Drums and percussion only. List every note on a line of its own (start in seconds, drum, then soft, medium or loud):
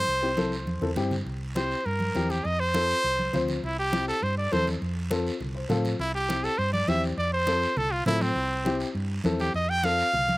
0.07 high conga soft
0.07 long guiro medium
0.37 high conga medium
0.37 short guiro medium
0.52 short guiro medium
0.67 high conga medium
0.67 long guiro medium
0.82 low conga medium
0.96 low conga medium
0.96 short guiro medium
1.11 low conga medium
1.11 short guiro medium
1.26 high conga soft
1.26 long guiro medium
1.56 high conga loud
1.56 short guiro medium
1.71 short guiro medium
1.86 high conga soft
1.86 long guiro medium
2.00 high conga medium
2.15 high conga medium
2.15 short guiro medium
2.30 high conga medium
2.30 short guiro medium
2.45 high conga soft
2.45 long guiro medium
2.74 high conga loud
2.74 short guiro medium
2.90 short guiro medium
3.04 high conga soft
3.04 long guiro medium
3.19 high conga medium
3.34 high conga medium
3.34 low conga medium
3.34 short guiro medium
3.48 high conga medium
3.48 short guiro medium
3.63 high conga soft
3.63 long guiro medium
3.93 high conga loud
3.93 short guiro medium
4.08 short guiro medium
4.23 high conga soft
4.23 long guiro medium
4.52 high conga medium
4.52 short guiro medium
4.67 high conga medium
4.67 short guiro medium
4.82 high conga soft
4.82 long guiro medium
5.11 high conga loud
5.11 short guiro medium
5.27 short guiro medium
5.40 high conga soft
5.40 low conga medium
5.40 long guiro medium
5.70 high conga medium
5.70 low conga medium
5.70 short guiro medium
5.85 high conga medium
5.85 short guiro medium
5.99 high conga soft
5.99 long guiro medium
6.29 high conga loud
6.29 short guiro medium
6.44 short guiro medium
6.59 high conga soft
6.59 long guiro medium
6.74 high conga medium
6.88 high conga medium
6.88 short guiro medium
7.03 short guiro medium
7.17 high conga soft
7.17 long guiro medium
7.47 high conga loud
7.47 short guiro medium
7.62 short guiro medium
7.76 high conga soft
7.76 low conga medium
7.76 long guiro medium
8.06 high conga medium
8.06 low conga medium
8.06 short guiro medium
8.21 high conga medium
8.21 short guiro medium
8.36 high conga soft
8.36 long guiro medium
8.66 high conga loud
8.66 short guiro medium
8.80 short guiro medium
8.95 high conga soft
8.95 long guiro medium
9.24 high conga medium
9.24 short guiro medium
9.39 high conga medium
9.39 short guiro medium
9.54 high conga soft
9.54 long guiro medium
9.84 high conga loud
9.84 short guiro medium
9.98 short guiro medium
10.13 high conga soft
10.13 low conga medium
10.13 long guiro medium
10.29 high conga medium